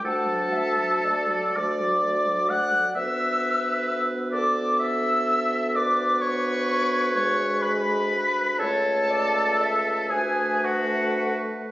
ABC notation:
X:1
M:6/8
L:1/16
Q:3/8=42
K:D
V:1 name="Flute"
a6 d'4 f'2 | [K:Bdor] e'4 z2 d'2 e'4 | d'2 c'4 c'2 b4 | a6 g2 f2 z2 |]
V:2 name="Clarinet"
f2 e2 d8 | [K:Bdor] B6 A6 | B8- B2 z2 | c2 d2 e2 B6 |]
V:3 name="Oboe"
A6 d4 f2 | [K:Bdor] e4 z2 d2 e4 | d2 c4 c2 B4 | A6 G2 F2 z2 |]
V:4 name="French horn"
A, F, A, F, A, F, A, F, A, F, A, F, | [K:Bdor] B,12- | B,6 G,6 | A,6 A,6 |]
V:5 name="Bassoon" clef=bass
D,,6 D,,6 | [K:Bdor] D,,12- | D,,12 | C,,6 D,,6 |]